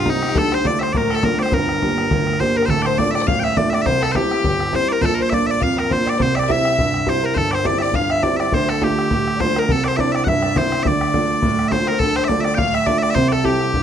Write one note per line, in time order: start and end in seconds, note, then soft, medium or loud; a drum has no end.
0.00 0.31 C2 medium
0.00 2.46 F4 medium
0.00 0.22 G4 medium
0.00 0.36 A4 medium
0.00 0.45 C5 medium
0.00 0.12 D5 medium
0.06 0.30 G3 soft
0.06 0.30 C4 soft
0.06 0.24 D#4 medium
0.06 0.71 D#4 medium
0.06 0.30 D#4 soft
0.06 0.38 D#4 loud
0.06 bodhran medium
0.22 0.37 G4 medium
0.22 2.58 G4 medium
0.22 bodhran medium
0.29 bodhran medium
0.35 1.49 D2 medium
0.35 0.64 D3 medium
0.35 0.54 A4 medium
0.35 1.01 A4 medium
0.35 0.54 A4 loud
0.35 bodhran medium
0.52 0.66 C5 medium
0.52 0.82 C5 medium
0.52 0.67 C5 loud
0.52 bodhran medium
0.65 0.88 A3 medium
0.65 0.88 D4 medium
0.65 0.89 F4 medium
0.65 0.82 D5 medium
0.65 2.50 D5 medium
0.65 0.80 D5 loud
0.65 bodhran medium
0.80 0.93 C5 medium
0.80 1.40 C5 medium
0.80 0.93 C5 medium
0.80 0.83 E5 medium
0.80 bodhran medium
0.93 1.23 A2 medium
0.93 1.17 A#4 medium
0.93 1.12 A#4 medium
0.93 0.97 D5 medium
0.93 bodhran medium
0.97 1.15 A#4 medium
1.10 1.25 A4 medium
1.10 1.30 A4 medium
1.10 bodhran medium
1.15 1.25 A4 loud
1.15 bodhran medium
1.23 1.47 A3 soft
1.23 1.47 D4 soft
1.23 1.48 F4 soft
1.23 1.53 A#4 medium
1.23 1.39 A#4 medium
1.23 bodhran loud
1.39 1.55 C5 medium
1.39 2.41 C5 medium
1.39 1.54 C5 medium
1.39 1.43 D5 medium
1.39 bodhran medium
1.46 bodhran medium
1.52 2.66 G1 medium
1.52 1.81 G2 medium
1.52 2.40 A#4 medium
1.52 2.57 A#4 medium
1.52 2.40 A#4 medium
1.52 bodhran medium
1.69 bodhran medium
1.82 2.05 A#3 soft
1.82 2.06 D4 soft
1.82 2.06 G4 medium
1.82 bodhran medium
1.98 bodhran medium
2.11 2.39 D2 medium
2.11 bodhran medium
2.27 bodhran soft
2.33 bodhran soft
2.40 2.64 A#3 soft
2.40 2.64 D4 soft
2.40 2.64 G4 medium
2.40 2.57 C5 medium
2.40 2.58 C5 medium
2.40 2.85 C5 medium
2.40 bodhran medium
2.57 2.73 A#4 medium
2.57 2.66 A#4 medium
2.57 2.77 A#4 medium
2.62 2.70 C5 loud
2.62 bodhran soft
2.68 3.82 D1 medium
2.68 2.98 D2 medium
2.68 2.82 A4 loud
2.68 4.02 A4 medium
2.68 2.88 A4 medium
2.68 bodhran medium
2.82 3.86 C5 medium
2.82 2.98 C5 medium
2.82 2.86 D5 medium
2.82 bodhran medium
2.86 2.99 C5 loud
2.98 3.22 A3 medium
2.98 3.22 D4 medium
2.98 3.22 F4 medium
2.98 3.15 D5 loud
2.98 3.11 D5 loud
2.98 3.15 D5 medium
2.98 bodhran medium
3.07 bodhran soft
3.11 3.29 D5 loud
3.11 3.15 E5 medium
3.15 3.27 D5 medium
3.15 3.57 D5 medium
3.15 bodhran medium
3.27 3.56 A1 medium
3.27 3.40 F5 medium
3.27 3.58 F5 medium
3.27 3.50 F5 medium
3.27 bodhran loud
3.40 3.58 E5 loud
3.40 3.44 G5 loud
3.44 5.16 E5 medium
3.44 bodhran medium
3.56 3.80 A3 medium
3.56 3.81 D4 soft
3.56 3.81 F4 medium
3.56 3.72 D5 medium
3.56 3.73 D5 medium
3.56 3.70 D5 loud
3.56 bodhran loud
3.70 3.87 D5 medium
3.70 5.32 D5 medium
3.70 3.75 E5 loud
3.70 bodhran medium
3.75 3.82 D5 loud
3.82 4.14 C2 medium
3.82 4.03 C5 medium
3.82 3.86 E5 loud
3.86 4.03 C5 loud
3.86 4.74 C5 medium
3.86 bodhran medium
4.01 4.18 A4 medium
4.01 4.97 A4 medium
4.01 4.12 A4 loud
4.01 bodhran medium
4.12 4.38 G3 medium
4.12 4.39 C4 medium
4.12 4.39 E4 medium
4.12 6.50 G4 medium
4.12 4.16 C5 medium
4.12 bodhran loud
4.16 4.75 G4 medium
4.16 4.61 G4 medium
4.23 bodhran soft
4.31 bodhran medium
4.44 4.72 G1 medium
4.44 bodhran medium
4.60 bodhran medium
4.72 4.96 G3 soft
4.72 4.96 C4 medium
4.72 4.96 E4 medium
4.72 4.92 C5 medium
4.72 5.18 C5 medium
4.72 4.89 C5 loud
4.72 bodhran medium
4.89 5.06 A#4 medium
4.89 5.09 A#4 medium
4.89 5.02 A#4 loud
4.89 4.92 D5 loud
5.01 6.15 A#1 medium
5.01 5.30 A#2 medium
5.01 5.83 A4 medium
5.01 5.21 A4 medium
5.01 5.14 A4 loud
5.01 5.05 C5 loud
5.01 bodhran medium
5.14 5.22 A#4 medium
5.14 5.90 C5 medium
5.20 5.33 C5 medium
5.20 5.30 C5 loud
5.30 5.55 A#3 soft
5.30 5.55 D4 medium
5.30 5.56 F4 medium
5.30 5.48 D5 medium
5.30 5.47 D5 medium
5.30 5.34 E5 loud
5.30 bodhran medium
5.34 5.47 D5 loud
5.41 bodhran soft
5.47 6.05 D5 medium
5.47 5.62 D5 medium
5.47 5.51 E5 loud
5.51 5.63 D5 loud
5.60 5.90 F2 medium
5.60 5.78 F5 medium
5.60 6.55 F5 medium
5.60 5.79 F5 medium
5.60 bodhran medium
5.77 5.92 A#4 medium
5.77 7.22 A#4 medium
5.77 5.92 A#4 medium
5.77 bodhran medium
5.90 6.14 A#3 medium
5.90 6.14 D4 soft
5.90 6.14 F4 medium
5.90 6.07 C5 medium
5.90 6.19 C5 medium
5.90 6.09 C5 loud
5.90 bodhran medium
6.06 6.20 D5 medium
6.06 6.35 D5 medium
6.06 6.22 D5 loud
6.06 bodhran medium
6.18 7.32 C2 medium
6.18 6.48 C3 medium
6.18 6.37 C5 medium
6.18 7.06 C5 medium
6.18 bodhran medium
6.22 6.35 C5 loud
6.35 6.49 D5 medium
6.35 7.64 D5 medium
6.35 6.40 E5 medium
6.35 bodhran medium
6.40 6.52 D5 medium
6.40 bodhran medium
6.48 6.72 G3 medium
6.48 6.72 C4 medium
6.48 6.72 E4 medium
6.48 6.94 E5 loud
6.48 8.01 E5 medium
6.48 7.09 E5 loud
6.48 bodhran medium
6.58 bodhran soft
6.65 bodhran medium
6.79 7.06 G2 medium
6.79 bodhran medium
6.94 bodhran medium
7.06 7.30 G3 medium
7.06 7.30 C4 soft
7.06 7.30 E4 medium
7.06 7.52 C5 medium
7.06 7.25 C5 medium
7.06 7.25 C5 loud
7.06 bodhran medium
7.22 7.42 A#4 medium
7.22 7.38 A#4 medium
7.22 7.34 A#4 medium
7.34 8.48 G1 medium
7.34 7.64 G2 medium
7.34 9.55 A4 medium
7.34 7.55 A4 medium
7.34 7.51 A4 loud
7.34 7.37 C5 loud
7.34 bodhran medium
7.51 8.53 C5 medium
7.51 7.67 C5 medium
7.51 7.66 C5 medium
7.51 7.55 D5 medium
7.51 bodhran medium
7.64 7.88 G3 medium
7.64 7.88 C4 soft
7.64 7.89 E4 medium
7.64 8.23 D5 medium
7.64 7.81 D5 medium
7.64 7.79 D5 loud
7.64 bodhran medium
7.72 bodhran soft
7.79 7.96 D5 medium
7.79 7.82 E5 medium
7.79 bodhran medium
7.94 8.22 G2 medium
7.94 8.25 F5 medium
7.94 8.16 F5 medium
7.94 8.11 F5 medium
7.94 bodhran medium
8.10 9.82 E5 medium
8.10 8.23 E5 loud
8.10 bodhran medium
8.23 8.46 G3 medium
8.23 8.46 C4 medium
8.23 8.46 E4 soft
8.23 8.37 D5 loud
8.23 8.39 D5 medium
8.23 bodhran medium
8.37 9.97 D5 medium
8.37 8.52 D5 medium
8.37 8.54 D5 medium
8.37 8.40 E5 medium
8.37 bodhran medium
8.52 9.64 D2 medium
8.52 8.80 D3 medium
8.52 8.71 C5 medium
8.52 9.39 C5 medium
8.52 8.69 C5 loud
8.52 bodhran medium
8.69 8.83 A4 medium
8.69 8.84 A4 medium
8.69 bodhran medium
8.81 9.05 A3 medium
8.81 9.05 D4 soft
8.81 9.05 F4 medium
8.81 9.26 G4 medium
8.81 11.17 G4 medium
8.81 9.40 G4 medium
8.81 bodhran medium
8.91 bodhran soft
8.99 bodhran medium
9.11 9.39 A2 medium
9.11 bodhran medium
9.27 bodhran medium
9.36 9.63 A3 medium
9.36 9.85 C5 medium
9.36 9.42 D5 medium
9.40 9.63 D4 medium
9.40 9.63 F4 medium
9.40 9.59 C5 loud
9.40 9.59 C5 medium
9.40 bodhran medium
9.56 9.75 A#4 medium
9.56 9.72 A#4 medium
9.56 bodhran medium
9.68 10.81 C2 medium
9.68 9.96 C3 medium
9.68 11.95 A4 medium
9.68 9.89 A4 medium
9.68 9.84 A4 loud
9.68 bodhran medium
9.84 10.55 C5 medium
9.84 10.02 C5 medium
9.84 9.97 C5 loud
9.84 9.88 D5 loud
9.84 bodhran medium
9.96 10.20 C4 medium
9.96 10.20 D4 medium
9.96 10.20 E4 medium
9.96 10.43 D5 medium
9.96 10.00 E5 loud
9.96 bodhran medium
10.00 10.12 D5 loud
10.00 10.15 D5 medium
10.12 10.24 D5 medium
10.12 10.16 E5 medium
10.12 bodhran medium
10.16 10.27 D5 medium
10.24 10.55 G2 medium
10.24 12.00 E5 medium
10.24 10.58 E5 medium
10.24 10.28 F#5 medium
10.24 bodhran medium
10.29 10.60 E5 medium
10.42 10.85 D5 medium
10.42 bodhran medium
10.55 10.78 C4 medium
10.55 10.79 D4 medium
10.55 10.79 E4 medium
10.55 11.72 C5 medium
10.55 10.83 C5 loud
10.55 10.88 C5 medium
10.55 bodhran loud
10.72 bodhran medium
10.83 11.96 D2 medium
10.83 11.13 D3 medium
10.83 12.29 D5 medium
10.83 11.71 D5 medium
10.83 10.87 E5 loud
10.83 bodhran medium
10.87 11.68 D5 loud
11.01 bodhran medium
11.13 11.37 A3 medium
11.13 11.37 D4 soft
11.13 11.37 F4 medium
11.13 bodhran medium
11.22 bodhran soft
11.42 11.70 A2 medium
11.42 bodhran medium
11.59 bodhran medium
11.68 11.94 A3 medium
11.68 11.94 D4 soft
11.68 11.94 F4 medium
11.68 12.01 C5 medium
11.68 11.88 C5 loud
11.68 12.17 C5 medium
11.68 11.72 E5 loud
11.68 bodhran medium
11.87 11.99 A#4 loud
11.87 12.08 A#4 medium
11.87 bodhran medium
11.99 13.12 D2 medium
11.99 12.28 D3 medium
11.99 12.16 A4 loud
11.99 12.17 A4 medium
11.99 13.31 A4 medium
11.99 bodhran medium
12.16 12.30 C5 medium
12.16 12.24 C5 loud
12.16 13.14 C5 medium
12.16 bodhran medium
12.24 12.41 D5 loud
12.24 12.28 E5 loud
12.29 12.52 A3 medium
12.29 12.52 D4 soft
12.29 12.53 F4 medium
12.29 12.44 D5 medium
12.29 12.45 D5 medium
12.29 bodhran medium
12.38 12.45 E5 medium
12.38 bodhran soft
12.45 12.55 D5 medium
12.45 12.58 D5 medium
12.45 12.86 D5 medium
12.45 bodhran medium
12.55 12.86 A2 medium
12.55 12.75 F5 medium
12.55 12.75 F5 loud
12.55 12.80 F5 medium
12.55 12.58 G5 loud
12.55 bodhran medium
12.73 12.88 E5 medium
12.73 13.83 E5 medium
12.73 12.87 E5 loud
12.73 bodhran medium
12.86 13.10 A3 medium
12.86 13.10 D4 medium
12.86 13.10 F4 medium
12.86 13.03 D5 medium
12.86 12.98 D5 loud
12.86 13.01 D5 medium
12.86 bodhran medium
12.98 13.83 D5 medium
12.98 13.03 E5 loud
13.03 13.10 D5 loud
13.03 13.18 D5 medium
13.03 bodhran medium
13.10 13.15 E5 loud
13.15 13.83 C2 medium
13.15 13.44 C3 medium
13.15 13.28 C5 loud
13.15 13.83 C5 medium
13.15 13.33 C5 medium
13.15 bodhran medium
13.28 13.83 A4 medium
13.28 13.47 A4 medium
13.28 13.45 A4 medium
13.28 13.32 D5 medium
13.28 bodhran medium
13.43 13.67 G3 medium
13.43 13.67 C4 soft
13.43 13.67 E4 medium
13.43 13.83 G4 medium
13.43 13.83 G4 loud
13.43 13.83 G4 medium
13.43 bodhran medium
13.53 bodhran soft
13.61 bodhran soft
13.74 13.83 G2 medium
13.74 bodhran medium